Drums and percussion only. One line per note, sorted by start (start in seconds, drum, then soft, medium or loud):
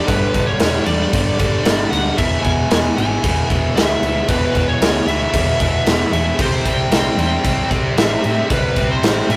0.08 kick loud
0.08 crash medium
0.34 kick medium
0.34 crash medium
0.60 snare loud
0.60 crash medium
0.86 crash medium
1.13 kick loud
1.13 crash medium
1.39 kick loud
1.39 crash medium
1.65 snare loud
1.65 crash medium
1.93 crash medium
2.18 kick loud
2.18 crash medium
2.44 kick medium
2.44 crash medium
2.71 snare loud
2.71 crash medium
2.98 crash medium
3.24 kick loud
3.24 crash medium
3.50 kick medium
3.50 crash medium
3.77 snare loud
3.77 crash medium
4.03 crash medium
4.28 kick loud
4.28 crash medium
4.55 kick medium
4.55 crash medium
4.82 snare loud
4.82 crash medium
5.08 crash medium
5.34 kick loud
5.34 crash medium
5.60 kick medium
5.60 crash medium
5.86 snare loud
5.86 crash medium
6.13 crash medium
6.39 kick loud
6.39 crash medium
6.65 kick medium
6.65 crash medium
6.92 snare loud
6.92 crash medium
7.19 crash medium
7.44 kick loud
7.44 crash medium
7.71 kick loud
7.71 crash medium
7.98 snare loud
7.98 crash medium
8.24 crash medium
8.50 kick loud
8.50 crash medium
8.76 kick medium
8.76 crash medium
9.03 snare loud
9.03 crash medium
9.30 crash medium